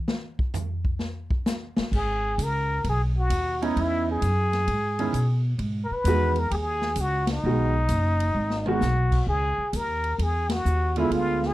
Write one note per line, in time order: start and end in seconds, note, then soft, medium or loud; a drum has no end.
0.08 snare medium
0.39 kick medium
0.54 floor tom loud
0.54 hi-hat pedal medium
0.85 kick medium
0.99 snare medium
1.30 kick medium
1.46 snare loud
1.46 hi-hat pedal medium
1.77 muted upright bass stroke soft
1.77 snare loud
1.91 2.37 G#1 medium
1.91 2.45 G#4 loud
1.91 kick medium
1.91 crash medium
2.38 2.83 C#2 medium
2.38 kick soft
2.38 hi-hat pedal medium
2.38 ride medium
2.43 2.87 A#4 medium
2.84 3.29 B1 medium
2.84 kick soft
2.84 ride medium
2.89 3.02 G#4 medium
3.18 3.65 F#4 medium
3.30 3.75 D#2 medium
3.30 kick soft
3.30 hi-hat pedal soft
3.30 ride medium
3.62 4.20 B3 medium
3.62 4.20 C#4 medium
3.62 4.20 D#4 medium
3.62 3.82 D#4 medium
3.62 4.20 E4 medium
3.62 ride soft
3.76 4.21 E2 medium
3.76 kick soft
3.76 ride medium
3.80 4.09 E4 medium
4.11 5.43 G#4 loud
4.22 4.67 F#2 medium
4.22 kick soft
4.22 hi-hat pedal soft
4.22 ride medium
4.53 snare soft
4.53 ride soft
4.68 5.12 G#2 medium
4.68 kick soft
4.68 ride medium
4.99 5.13 D#3 medium
4.99 5.13 B3 soft
4.99 5.13 C#4 medium
4.99 5.13 E4 medium
4.99 ride soft
5.13 5.58 B2 medium
5.13 kick soft
5.13 hi-hat pedal medium
5.13 ride medium
5.58 5.88 G#2 medium
5.58 kick soft
5.58 ride medium
5.84 5.94 A#4 medium
5.91 6.41 B4 loud
5.91 muted upright bass stroke soft
6.04 6.50 E2 medium
6.04 6.34 D#3 medium
6.04 6.34 G#3 medium
6.04 6.35 B3 medium
6.04 6.35 F#4 medium
6.04 kick soft
6.04 hi-hat pedal medium
6.04 ride medium
6.36 6.49 A#4 medium
6.36 ride soft
6.50 6.96 D#2 medium
6.50 6.55 G4 medium
6.50 7.02 G#4 loud
6.50 kick soft
6.50 ride medium
6.81 snare medium
6.96 7.42 C#2 medium
6.96 kick soft
6.96 hi-hat pedal medium
6.96 ride medium
7.01 7.30 F#4 medium
7.27 snare medium
7.27 ride medium
7.32 8.64 D#4 medium
7.44 7.88 B1 medium
7.44 7.72 D#3 medium
7.44 7.73 G#3 medium
7.44 7.73 B3 soft
7.44 7.73 F#4 medium
7.89 8.34 F#1 medium
7.89 kick soft
7.89 hi-hat pedal medium
7.89 ride medium
8.20 ride medium
8.35 8.80 G#1 medium
8.50 snare medium
8.66 8.80 D#3 medium
8.66 8.81 G#3 medium
8.66 8.81 B3 medium
8.66 8.81 F#4 medium
8.66 9.25 F#4 medium
8.66 mid tom medium
8.81 9.26 B1 medium
8.81 snare medium
8.81 hi-hat pedal medium
9.12 kick medium
9.12 crash medium
9.27 9.56 C#2 medium
9.27 9.78 G#4 loud
9.27 kick soft
9.58 muted upright bass stroke soft
9.73 10.18 D#2 medium
9.73 10.24 A#4 medium
9.73 kick soft
9.73 hi-hat pedal medium
9.73 ride medium
10.04 ride soft
10.18 10.64 E2 medium
10.18 kick soft
10.18 ride medium
10.23 10.54 G#4 medium
10.49 10.97 F#4 medium
10.49 snare medium
10.49 ride medium
10.65 11.10 D#2 medium
10.65 hi-hat pedal medium
10.96 11.54 D3 medium
10.96 11.54 G#3 medium
10.96 11.54 B3 medium
10.96 11.12 E4 medium
10.96 11.54 F4 medium
10.96 ride soft
11.10 11.54 D2 medium
11.10 11.48 F4 medium
11.10 kick soft
11.10 ride medium
11.42 snare soft
11.47 11.54 G#4 medium